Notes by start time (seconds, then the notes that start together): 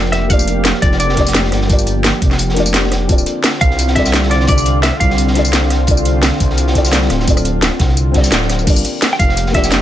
Already playing: F1 F3 A#3 D4 F4 G4 D5
0.05 snare
0.12 E5, cross-stick, snare, closed hi-hat
0.27 A#3 D4 F4 F5, kick, closed hi-hat, tambourine
0.32 G4 D5
0.39 tambourine
0.48 closed hi-hat, tambourine
0.65 snare, closed hi-hat, tambourine
0.74 snare
0.82 F1 D5, kick, closed hi-hat, tambourine
0.92 snare
1.00 D5, closed hi-hat, tambourine
1.09 snare
1.14 A#3 D4 F4, kick, snare, closed hi-hat
1.19 G4 D5
1.27 snare, tambourine
1.35 snare, closed hi-hat, tambourine
1.44 snare
1.52 G1, cross-stick, snare, closed hi-hat
1.61 snare
1.67 A#3 D4 F4, kick, closed hi-hat, tambourine
1.72 G4 D5
1.79 closed hi-hat, tambourine
1.86 closed hi-hat, tambourine
2.04 snare, closed hi-hat, tambourine
2.14 cross-stick
2.22 F1, kick, closed hi-hat, tambourine
2.31 snare
2.39 closed hi-hat, tambourine
2.49 snare
2.54 A#3 D4 F4, snare, closed hi-hat
2.58 G4 D5
2.66 closed hi-hat, tambourine
2.74 snare, closed hi-hat, tambourine
2.83 snare
2.92 cross-stick, snare, closed hi-hat
3.06 D1 D3 C4 D4 F4, kick, closed hi-hat, tambourine
3.11 A4 D5
3.18 tambourine
3.26 closed hi-hat, tambourine
3.44 snare, closed hi-hat, tambourine
3.53 snare
3.61 C2 F5, kick, closed hi-hat, tambourine
3.70 snare
3.79 closed hi-hat, tambourine
3.87 snare
3.93 C4 D4 F4 E5, kick, snare, closed hi-hat
3.98 A4 D5
4.05 snare, tambourine
4.13 snare, closed hi-hat, tambourine
4.23 snare
4.31 D5, cross-stick, snare, closed hi-hat
4.40 snare
4.46 C4 D4 F4 D5, kick, closed hi-hat, tambourine
4.50 A4 D5
4.57 closed hi-hat, tambourine
4.66 closed hi-hat, tambourine
4.83 E5, snare, closed hi-hat, tambourine
4.92 cross-stick
5.00 C2 F5, kick, closed hi-hat, tambourine
5.10 snare
5.18 closed hi-hat, tambourine
5.27 snare
5.33 C4 D4 F4, snare, closed hi-hat
5.37 A4 D5
5.45 closed hi-hat, tambourine
5.53 snare, closed hi-hat, tambourine
5.63 snare
5.70 cross-stick, snare, closed hi-hat
5.85 C4 D4 F4, kick, closed hi-hat, tambourine
5.90 A4 D5
5.97 tambourine
6.05 closed hi-hat, tambourine
6.22 snare, closed hi-hat, tambourine
6.32 snare
6.40 C2, kick, closed hi-hat, tambourine
6.50 snare
6.57 closed hi-hat, tambourine
6.67 snare
6.72 C4 D4 F4, kick, snare, closed hi-hat
6.76 A4 D5
6.84 snare, tambourine
6.92 snare, closed hi-hat, tambourine
7.02 snare
7.10 D1, cross-stick, snare, closed hi-hat
7.20 snare
7.25 C4 D4 F4, kick, closed hi-hat, tambourine
7.29 A4 D5
7.37 cross-stick, closed hi-hat, tambourine
7.45 closed hi-hat, tambourine
7.62 snare, closed hi-hat, tambourine
7.72 cross-stick
7.79 C2, kick, snare, closed hi-hat, tambourine
7.89 snare
7.97 closed hi-hat, tambourine
8.12 C4 D4 F4, kick, snare, closed hi-hat
8.16 A4 D5
8.23 snare, closed hi-hat, tambourine
8.32 D1, snare, closed hi-hat, tambourine
8.41 snare
8.50 cross-stick, snare, closed hi-hat, tambourine
8.59 tambourine
8.64 G1 F3 A#3 D4 F4 G4, kick, closed hi-hat, crash, tambourine
8.68 G4 D5
8.76 tambourine
8.85 closed hi-hat, tambourine
9.02 snare, closed hi-hat, tambourine
9.10 G5, snare
9.19 F1 F5, kick, closed hi-hat, tambourine
9.29 snare
9.37 closed hi-hat, tambourine
9.46 snare
9.51 A#3 D4 F4 E5, kick, snare, closed hi-hat
9.56 G4 D5
9.63 snare, tambourine
9.71 snare, closed hi-hat, tambourine